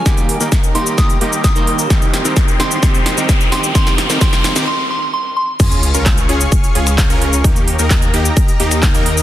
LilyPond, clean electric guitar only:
\new Staff \with { instrumentName = "Clean electric guitar" } { \time 4/4 \key des \lydian \tempo 4 = 130 <ees g bes g'>8. <ees g bes g'>16 r8 <ees g bes g'>4 <ees g bes g'>8. <ees g bes c''>8. | <ees g c' g'>8. <ees g c' g'>16 r8 <ees g c' g'>8 <ees g c' g'>8. <ees g c' g'>16 r8 <ees g c' g'>8 | <ees c'>8. <ees g c' g'>16 <ees c' g'>8. <ees g c' g'>16 r2 | r1 |
r1 | }